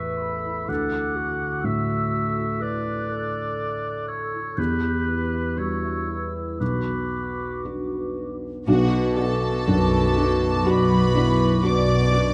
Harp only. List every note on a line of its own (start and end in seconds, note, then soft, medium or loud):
0.00 0.73 A2 medium
0.00 0.73 E3 soft
0.00 0.73 B3 soft
0.00 0.44 E4 soft
0.00 0.19 A4 soft
0.00 0.73 B4 soft
0.00 1.65 E5 soft
0.21 1.16 A4 soft
0.45 2.38 E4 soft
0.69 4.59 D3 medium
0.93 2.85 D4 soft
1.18 2.13 A4 soft
1.41 4.62 F#5 soft
1.66 3.58 E5 soft
2.14 3.10 A4 soft
2.39 4.33 E4 soft
2.63 4.62 A3 soft
2.87 4.62 D4 soft
3.11 4.08 A4 soft
3.60 5.32 E5 soft
4.09 4.62 A4 soft
4.34 4.82 E4 soft
4.59 6.65 E3 soft
4.83 6.65 E4 soft
5.08 6.08 B4 soft
5.33 5.83 E5 soft
5.58 6.65 B5 soft
5.84 6.66 E5 soft
6.09 7.39 B4 soft
6.35 6.65 G4 soft
6.61 8.67 B2 soft
6.88 8.91 B3 soft
7.14 8.16 F#4 soft
7.40 7.90 B4 soft
7.66 11.56 D5 soft
7.91 9.66 B4 soft
8.17 9.41 F#4 soft
8.43 9.16 D4 soft
8.68 12.34 B2 medium
8.92 10.16 B3 soft
9.17 11.14 D4 medium
9.42 9.91 F#4 medium
9.67 11.63 B4 medium
9.92 11.39 F#4 soft
10.17 10.66 B3 soft
10.42 10.90 F#3 medium
10.67 12.11 B3 medium
10.91 12.34 F#3 medium
11.15 12.34 D4 soft
11.40 11.87 F#4 soft
11.64 12.34 B4 medium
11.88 12.34 F#4 medium
12.12 12.34 B3 soft